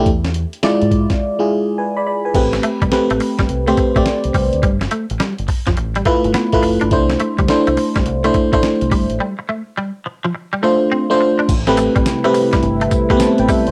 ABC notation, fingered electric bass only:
X:1
M:4/4
L:1/16
Q:"Swing 16ths" 1/4=105
K:Am
V:1 name="Fingered electric bass" clef=bass
E,,3 z2 ^G,,2 z8 z | A,,,2 z C,, z A,,, z G,,, C,,2 z A,,, z C,, C,, D,, | G,,,2 z A,,, z G,,, z F,,, A,,,2 z G,,, z A,,, F,,, G,,, | C,,2 z D,, z C,, z A,,, C,,2 z A,,, z C,, G,,, A,,, |
z16 | A,,,3 A,,, z4 G,,,2 z3 A,,, z D,, |]